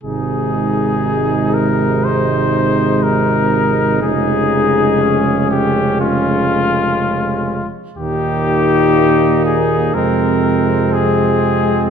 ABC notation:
X:1
M:4/4
L:1/8
Q:1/4=60
K:Ab
V:1 name="Trumpet"
A3 B c2 B2 | A3 G F3 z | G3 A B2 A2 |]
V:2 name="Trumpet"
E8- | E2 D4- D z | E4 C4 |]
V:3 name="French horn" clef=bass
A,8 | A,6- A, z | B,4 A,4 |]
V:4 name="Trombone" clef=bass
C,8 | D,6- D, z | B,,4 C,4 |]
V:5 name="Tuba" clef=bass
A,,,8 | F,,,6- F,,, z | E,,4 F,,4 |]